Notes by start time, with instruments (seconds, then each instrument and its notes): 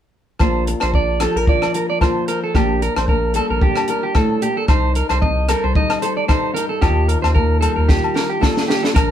0.39 sub bass A#1, nylon-string guitar A#2 F4, clean electric guitar C5, kick, cross-stick, low agogo
0.67 muted clean electric guitar stroke, closed hi-hat
0.80 sub bass A#1, clean electric guitar C5, cross-stick, low agogo
0.94 nylon-string guitar D4, clean electric guitar D5, kick
1.20 nylon-string guitar F3 G4, clean electric guitar A4, cross-stick, closed hi-hat, low agogo
1.36 sub bass A#1, clean electric guitar A#4, nylon-string guitar A#4
1.47 nylon-string guitar F4, clean electric guitar D5, kick
1.62 cross-stick, low agogo
1.74 clean electric guitar A#4, closed hi-hat
1.89 nylon-string guitar A#4, clean electric guitar D5
2.01 nylon-string guitar A#2 F4, clean electric guitar C5, kick, cross-stick, low agogo
2.28 clean electric guitar A#4, nylon-string guitar C5, closed hi-hat
2.44 clean electric guitar A4
2.55 sub bass A#1, nylon-string guitar A#2 D4, clean electric guitar G4, kick, cross-stick, low agogo
2.82 clean electric guitar A#4, closed hi-hat
2.96 sub bass A#1, clean electric guitar C5, cross-stick, low agogo
3.08 nylon-string guitar A#3, clean electric guitar A#4, kick
3.33 nylon-string guitar G3 A4, clean electric guitar A4, closed hi-hat, low agogo
3.50 sub bass A#1, clean electric guitar A#4
3.61 nylon-string guitar D4, clean electric guitar G4, kick
3.76 cross-stick, low agogo
3.88 nylon-string guitar G4, clean electric guitar A#4, closed hi-hat
4.03 clean electric guitar G4
4.15 nylon-string guitar A2, clean electric guitar A4, kick, cross-stick, low agogo
4.41 nylon-string guitar A#2, clean electric guitar G4, closed hi-hat
4.57 clean electric guitar A4
4.68 sub bass C2, nylon-string guitar D#4, clean electric guitar C5, muted nylon-string guitar stroke, kick, cross-stick, low agogo
4.95 clean electric guitar A#4, closed hi-hat
5.09 sub bass C2, clean electric guitar C5, cross-stick, low agogo
5.22 nylon-string guitar C4, clean electric guitar D#5, kick
5.48 nylon-string guitar G3 A4, clean electric guitar A#4, cross-stick, closed hi-hat, low agogo
5.64 sub bass C2, clean electric guitar C5
5.75 nylon-string guitar D#4, clean electric guitar D#5, kick
5.90 cross-stick, low agogo
6.02 nylon-string guitar A4, clean electric guitar C5, closed hi-hat
6.17 clean electric guitar D5
6.28 nylon-string guitar G2 D#4, clean electric guitar C5, kick, cross-stick, low agogo
6.54 nylon-string guitar G4, clean electric guitar A#4, closed hi-hat
6.69 clean electric guitar A4
6.81 sub bass D#2, nylon-string guitar D#3 F4, clean electric guitar G4, kick, cross-stick, low agogo
7.08 clean electric guitar A#4, closed hi-hat
7.22 sub bass D#2, clean electric guitar C5, cross-stick, low agogo
7.35 nylon-string guitar A#3, clean electric guitar A#4, kick
7.61 nylon-string guitar G3, clean electric guitar A4, closed hi-hat, low agogo
7.76 sub bass D#2, clean electric guitar A#4
7.88 nylon-string guitar F4, clean electric guitar G4, kick, snare
8.04 low agogo
8.14 nylon-string guitar G4, clean electric guitar A#4, snare
8.29 clean electric guitar G4
8.41 nylon-string guitar A#2 F4, clean electric guitar A4, kick, snare, low agogo
8.57 snare
8.67 nylon-string guitar G4, clean electric guitar G4, snare
8.83 clean electric guitar A4, snare
8.93 sub bass A#1, nylon-string guitar A#2 D4, clean electric guitar A#4, kick, cross-stick, closed hi-hat, low agogo